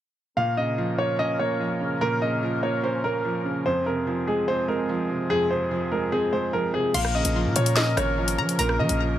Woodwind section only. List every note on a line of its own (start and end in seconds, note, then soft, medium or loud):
0.37 6.77 F3 medium
0.37 3.62 A#3 medium
0.37 3.62 C#4 medium
0.37 3.62 A#4 medium
3.66 6.77 G#3 medium
3.66 6.77 C4 medium
3.66 6.77 G#4 medium
6.94 9.19 F3 medium
6.94 9.19 A#3 medium
6.94 9.19 C#4 medium
6.94 9.19 A#4 medium